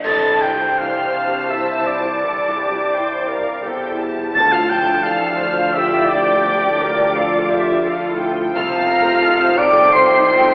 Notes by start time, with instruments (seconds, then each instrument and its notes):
Already playing: harp D4 C5
0.04 cello section C2, double bass section C2, grand piano C2, harp C3, viola section E4 C5, french horn section A4, flute section A5, oboe A5, violin section A6, concert bass drum, crash
0.31 grand piano G2
0.41 harp G3, french horn section G4, flute section G5, oboe G5, violin section G6
0.55 grand piano G3
0.77 grand piano E3, harp C4, viola section D4, french horn section G4, oboe F5, flute section F5, violin section G5 F6
1.04 grand piano C5
1.13 viola section D4, harp G4, violin section A5
1.28 grand piano G4
1.49 viola section E3, french horn section E4, harp C5, grand piano C5, flute section E5, oboe E5, violin section E6
1.76 grand piano E4
1.85 french horn section D4, flute section D5, oboe D5, violin section D6
2.01 grand piano G3
2.23 grand piano C2, harp C3, viola section A4
2.48 grand piano G2
2.58 harp G3, viola section G4
2.72 grand piano G3
2.93 grand piano E4, viola section C5, violin section G5
3.19 grand piano C5
3.29 harp G4, viola section A#4, violin section F5
3.43 grand piano G4
3.64 double bass section E1, cello section E2, viola section G4 A4, harp C5, grand piano C5, violin section G5
3.91 grand piano E4
3.99 viola section G4, violin section A5
4.14 grand piano G3
4.34 cello section D2, double bass section D2, grand piano D2, timpani D3, harp D3, viola section F4 A4, french horn section A4, oboe A5, flute section A5, violin section A6
4.52 french horn section F4, oboe F5, flute section F5, violin section F6
4.60 grand piano A2
4.69 harp F3, french horn section G4, oboe G5, flute section G5, violin section G6
4.82 grand piano F3
5.03 grand piano E3, french horn section D4, viola section D4 A4, oboe F5, flute section F5, violin section F6
5.30 grand piano A4
5.39 harp F4, viola section C5
5.53 grand piano F4
5.74 french horn section F4, viola section G4 D5, grand piano A4, oboe E5, flute section E5, violin section G5 E6
5.99 grand piano E4
6.08 french horn section D4, oboe D5, flute section D5, violin section D6
6.22 grand piano F3
6.45 grand piano D2, harp D3, viola section D5
6.68 grand piano A2
6.80 harp F3, viola section A#4
6.93 grand piano F3
7.14 viola section F4 A4, grand piano F4, violin section F5
7.39 grand piano A4
7.49 harp F4, viola section G4, violin section E5
7.63 grand piano F4
7.83 viola section F4 A4, grand piano A4, violin section F5
8.09 grand piano E4
8.18 harp E4, violin section G5
8.32 grand piano F3
8.53 double bass section C2, grand piano C2, cello section C3, harp C3, viola section F4 A4, french horn section F4, oboe F5, flute section F5, violin section A5 F6
8.71 viola section D#4 C5
8.79 grand piano C3
8.87 harp A3, viola section F4 A4, violin section A#5
9.02 grand piano A3, viola section D#4 C5
9.23 harp D#4, grand piano D#4, viola section F4 A4, violin section A5
9.42 viola section D#4 C5
9.49 grand piano C5
9.58 viola section F4 A4, harp A4, french horn section D5, violin section G5 D7, oboe D6, flute section D6
9.72 grand piano A4
9.77 viola section D#4 C5
9.92 viola section F4 A4, french horn section C5, harp C5, grand piano C5, oboe C6, flute section C6, violin section C7
10.13 viola section D#4 C5
10.18 grand piano D#4
10.30 harp D#4, viola section F4 A4
10.40 grand piano A3
10.46 viola section D#4 C5